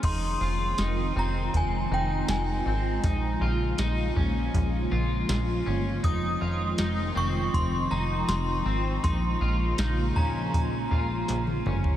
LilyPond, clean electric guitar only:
\new Staff \with { instrumentName = "Clean electric guitar" } { \time 4/4 \key f \minor \tempo 4 = 80 ees'8 f'8 ees'8 c'4 ees'4 c'8 | ees'8 f'8 ees'8 des'4 f'4 des'8 | ees'8 f'8 ees'8 c'4 ees'4 c'8 | ees'8 f'8 ees'8 des'4 f'4 des'8 | }